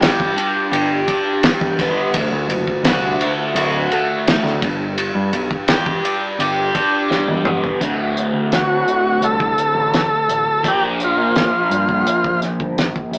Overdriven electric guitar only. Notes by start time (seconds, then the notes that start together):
Already playing: G2
0.00 G4
0.36 D4
0.72 G4
1.08 D4
1.44 G3
1.81 B3
2.16 D2
2.87 F#4
3.22 A3
3.57 F#4
3.94 A3
4.29 A2
4.63 G2
4.99 G2
5.69 G4
6.05 D4
6.40 G4
6.75 D4
7.10 G3
7.46 B3
7.80 D2 A2 D3 A3 F#4
10.63 A#2 F3 A#3 D4 F4 A#4